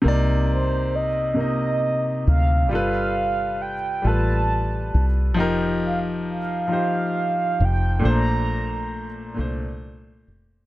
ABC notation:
X:1
M:6/8
L:1/8
Q:3/8=45
K:Cdor
V:1 name="Soft synth lead"
z c e e2 f | f2 g a2 z | z f f3 g | b3 z3 |]
V:2 name="Grand piano"
[C,B,Ed]2 z [C,B,Ee]2 z | [G,FA=B]2 z [G,FAB]2 z | [F,EGB]2 z [F,EGc]2 z | [B,,A,Dc]2 z [B,,A,Dc]2 z |]
V:3 name="Fingered electric bass" clef=bass
C,,4- C,, D,, | G,,,3 A,,,2 C,, | F,,,4- F,,, F,,, | B,,,3 C,,2 F,,, |]